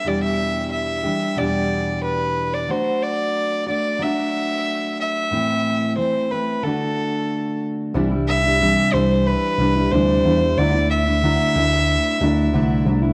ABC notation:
X:1
M:4/4
L:1/16
Q:1/4=91
K:Dmix
V:1 name="Violin"
d e3 e4 d4 B3 d | c2 d4 d2 e6 e2- | e4 c2 B2 A6 z2 | z2 e4 c2 B4 c4 |
d2 e12 z2 |]
V:2 name="Steel-string acoustic guitar"
[E,,B,,E,G,DG]6 [E,G,DG]2 [E,,B,,E,G,DG]8 | [F,A,DF]6 [A,DF]2 [F,A,DF]8 | [A,,E,A,CE]4 [E,A,CE]2 [A,CE]2 [D,A,DF]8 | [C,E,G,DE] [G,DE]2 [G,DE] [C,E,G,DE]2 [E,G,DE]4 [E,G,DE] [G,DE] [C,E,G,DE]2 [E,G,DE] [G,DE] |
[D,F,A,DE] [A,DE]2 [A,DE] [D,F,A,DE]2 [F,A,DE]4 [F,A,DE]2 [D,F,A,DE]2 [F,A,DE] [A,DE] |]
V:3 name="Tine electric piano" clef=bass
z16 | z16 | z16 | C,,4- C,, z C,,3 z C,,2 D,,2 E,,2 |
D,,4- D,, z D,,3 z D,,2 C,,2 C,,2 |]